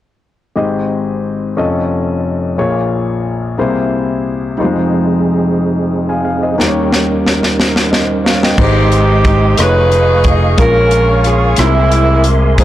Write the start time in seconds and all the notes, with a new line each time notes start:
0.56 G#1 G#2 C4 G4 G#4 D#5
1.57 F1 F2 C#4 F4 A4 D#5
2.57 A#1 A#2 A#3 F4 G#4 C#5
3.58 C2 C3 A#3 E4 G#4 C5
4.57 F1 F2 F3 G3 C4 D#4 F4 G#4 C5
4.64 G#3
6.09 F5 G#5
6.25 F5
6.43 C5 D#5
6.58 D#2 D#3 G3 A#3 C#4 D#4 G4 A#4 C5, snare
6.68 C#5
6.93 snare
7.26 snare
7.43 snare
7.60 snare
7.76 snare
7.91 C5 D#5, snare
8.24 C#5 F5, snare
8.43 D#5 G5, snare
8.58 G#1 G#2 G#3 C4 D#4 G4 C5 D#5 G5 C6, kick, crash
8.92 closed hi-hat
9.24 kick, closed hi-hat
9.57 F1 A3 D#4 F4 G#4 B4 C#5 F5 C#6, cross-stick, closed hi-hat
9.92 closed hi-hat
10.24 kick, closed hi-hat
10.57 A#1 A#2 G#3 C#4 F4 A#4 F5 G#5, kick, closed hi-hat
10.91 closed hi-hat
11.24 G#4, cross-stick, closed hi-hat
11.56 C2 C3 G#3 A#3 C4 D#4 E4 A#4 E5 C6, cross-stick, closed hi-hat
11.65 E4
11.92 closed hi-hat
12.24 closed hi-hat
12.58 F1 G#3 C4 D#4 F4 G#4 C5 F5 D#6, kick, closed hi-hat